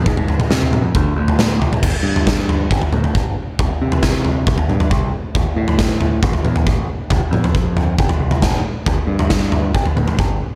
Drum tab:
CC |----------------|x---------------|----------------|----------------|
SD |----o-------o---|----o-----------|----o-----------|----o-----------|
T2 |---o--o-----o--o|----------o-----|----------o-----|----------o-----|
FT |oooo-o--o--o--oo|o--o--o--o-o----|o--o--o--o-o----|o--o--o--o-o----|
BD |o-------o-------|o---o---o---o---|o---o---o---o---|o---o---o---o---|

CC |----------------|----------------|
SD |------------o---|----o-----------|
T2 |--o---------o---|----------o-----|
FT |o--o--o--o-o----|o--o--o--o-o----|
BD |o---o---o---o---|o---o---o---o---|